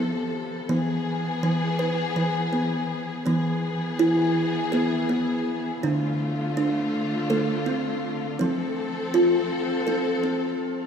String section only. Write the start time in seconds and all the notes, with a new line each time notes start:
Already playing: C3 F3 A4
0.70 E3 B3 G#4
3.26 E3 B3 G#4
5.82 D3 A3 F4
8.39 F3 C4 A4